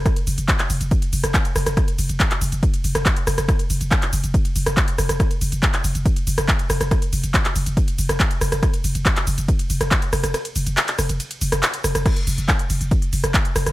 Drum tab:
CC |----------------|----------------|----------------|----------------|
RD |xxxxxxxxxxxxxxxx|xxxxxxxxxxxxxxxx|xxxxxxxxxxxxxxxx|xxxxxxxxxxxxxxxx|
HH |xxoxxxoxxxoxxxox|xxoxxxoxxxoxxxox|xxoxxxoxxxoxxxox|xxoxxxoxxxoxxxox|
SH |x-xxx-xxx-xxx-xx|x-xxx-xxx-xxx-xx|x-xxx-xxx-xxx-xx|x-xxx-xxx-xxx-xx|
CP |----xx------x---|----xx------x---|----xx------x---|----xx------x---|
SD |r----------r--rr|r----------r--rr|r----------r--rr|r----------r--rr|
BD |o---o---o---o---|o---o---o---o---|o---o---o---o---|o---o---o---o---|

CC |----------------|----------------|----------------|x---------------|
RD |xxxxxxxxxxxxxxxx|xxxxxxxxxxxxxxxx|xxxxxxxxxxxxxxxx|x-x-x-x-x-x-x-x-|
HH |xxoxxxoxxxoxxxox|xxoxxxoxxxoxxxox|xxoxxxoxxxoxxxox|xxoxxxoxxxoxxxox|
SH |x-xxx-xxx-xxx-xx|x-xxx-xxx-xxx-xx|x-xxx-xxx-xxx-xx|x-xxx-xxx-xxx-xx|
CP |----xx------x---|----xx------x---|----xx------x---|----x-------x---|
SD |r----------r--rr|r----------r--rr|r-----r----r--rr|r----------r--rr|
BD |o---o---o---o---|o---o---o---o---|----------------|o---o---o---o---|